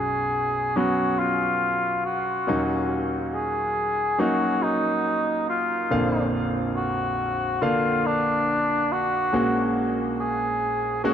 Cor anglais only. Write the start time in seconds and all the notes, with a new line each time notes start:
Already playing: G#4
0.77 F#4
1.19 F4
2.06 F#4
3.34 G#4
4.20 F#4
4.63 D#4
5.49 F4
6.76 F#4
7.62 F4
8.06 D4
8.92 F#4
10.20 G#4
11.04 F#4